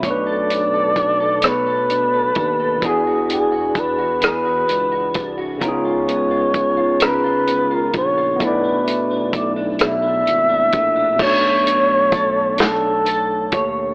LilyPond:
<<
  \new Staff \with { instrumentName = "Flugelhorn" } { \time 6/8 \key b \dorian \tempo 4. = 43 d''4. b'4. | gis'8 gis'8 b'8 b'4~ b'16 r16 | cis''4. b'8. ais'16 cis''8 | b'4 d''8 e''4. |
cis''4. a'4~ a'16 r16 | }
  \new Staff \with { instrumentName = "Clean electric guitar" } { \time 6/8 \key b \dorian <b cis''>16 a'16 d'16 a'16 d'16 a'16 <b cis''>16 a'16 d'16 a'16 d'16 a'16 | <e gis'>16 fis'16 d'16 fis'16 d'16 fis'16 <e gis'>16 fis'16 d'16 fis'16 d'16 fis'16 | <cis ais'>16 eis'16 b16 eis'16 b16 eis'16 <cis ais'>16 eis'16 b16 eis'16 b16 eis'16 | <b, e'>16 d'16 a16 d'16 a16 d'16 <b, e'>16 d'16 a16 d'16 a16 d'16 |
<b cis''>8 d'8 a'8 d'8 a'8 cis''8 | }
  \new Staff \with { instrumentName = "Tine electric piano" } { \time 6/8 \key b \dorian <b, a d' b'>2. | <e d' fis' gis'>2. | <cis b dis' e' eis' gis'>2. | <a b d' e' d''>2. |
<b, a d' cis''>2. | }
  \new Staff \with { instrumentName = "Analog synth bass" } { \clef bass \time 6/8 \key b \dorian b,,2~ b,,8 dis,8 | e,2 cis,8 c,8 | cis,2~ cis,8 ais,,8 | b,,2 gis,,8 ais,,8 |
b,,2~ b,,8 dis,8 | }
  \new DrumStaff \with { instrumentName = "Drums" } \drummode { \time 6/8 <hh bd>8 hh8 <hh bd>8 <hh ss>8 hh8 <hh bd>8 | <hh bd>8 hh8 <hh bd>8 <hh ss>8 hh8 <hh bd>8 | <hh bd>8 hh8 <hh bd>8 <hh ss>8 hh8 <hh bd>8 | <hh bd>8 hh8 <hh bd>8 <hh ss>8 hh8 <hh bd>8 |
<cymc bd>8 hh8 <hh bd>8 <hh sn>8 hh8 <hh bd>8 | }
>>